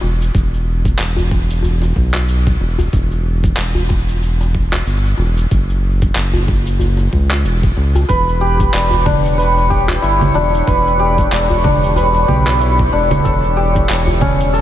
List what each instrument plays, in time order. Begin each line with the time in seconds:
0.01 analog synth bass E1, djembe tone
0.22 shaker
0.35 analog synth bass E1, kick, shaker
0.54 shaker
0.85 kick, shaker
0.99 analog synth bass E1, clap, shaker
1.16 djembe bass, shaker
1.31 kick, djembe tone
1.50 shaker
1.63 djembe bass, shaker
1.82 djembe slap, shaker
1.96 analog synth bass B1, kick, djembe slap
2.14 clap, djembe tone, shaker
2.28 shaker
2.47 kick, shaker
2.60 analog synth bass E1, djembe slap
2.79 djembe slap, djembe tone, djembe bass, shaker
2.93 analog synth bass E1, kick, shaker
3.11 shaker
3.44 kick, shaker
3.57 analog synth bass E1, clap, shaker
3.75 djembe bass, shaker
3.89 kick, djembe tone
4.08 shaker
4.23 shaker
4.41 djembe slap, shaker
4.55 kick
4.72 clap, djembe bass, shaker
4.86 analog synth bass G1, shaker
5.05 shaker
5.17 analog synth bass E1, djembe tone
5.37 shaker
5.51 analog synth bass F#1, kick, shaker
5.70 shaker
6.02 kick, shaker
6.15 analog synth bass F#1, clap, shaker
6.33 djembe bass, shaker
6.47 kick, djembe tone
6.67 shaker
6.80 djembe bass, shaker
6.97 djembe slap, shaker
7.11 analog synth bass C#2, kick, djembe slap
7.31 clap, djembe tone, shaker
7.44 analog synth bass E1, shaker
7.63 kick, shaker
7.77 analog synth bass C#2, djembe slap
7.95 djembe slap, djembe tone, djembe bass, shaker
8.09 analog synth bass E1, santur B4, synth texture C#5, kick, shaker
8.29 shaker
8.41 santur G4
8.60 kick, shaker
8.73 analog synth bass E1, santur D5, clap, shaker
8.91 djembe bass, shaker
9.06 santur D4, kick, djembe tone, low conga
9.25 shaker
9.38 santur B4, shaker
9.56 djembe slap, shaker
9.70 santur G4, kick
9.88 clap, djembe bass, shaker
10.02 analog synth bass G1, santur E4, shaker
10.21 low conga, shaker
10.34 analog synth bass E1, santur D4, djembe tone
10.54 shaker
10.67 analog synth bass E1, santur B4, kick, shaker
10.87 shaker
10.99 santur G4
11.18 kick, shaker
11.32 analog synth bass E1, santur D5, clap, shaker
11.50 djembe bass, shaker
11.64 santur D4, kick, djembe tone, low conga
11.83 shaker
11.96 santur B4, djembe bass, shaker
12.15 djembe slap, shaker
12.28 analog synth bass B1, santur G4, kick, djembe slap, low conga
12.45 clap, djembe tone, shaker
12.60 santur E4, shaker
12.79 kick, shaker
12.92 analog synth bass E1, santur D4, djembe slap
13.10 djembe slap, djembe tone, djembe bass, low conga, shaker
13.25 analog synth bass E1, santur A4, kick, shaker
13.44 shaker
13.57 santur G4
13.76 kick, shaker
13.89 analog synth bass E1, santur C#5, clap, shaker
14.07 djembe bass, shaker
14.21 santur C#4, kick, djembe tone, low conga
14.40 shaker
14.53 santur A4, shaker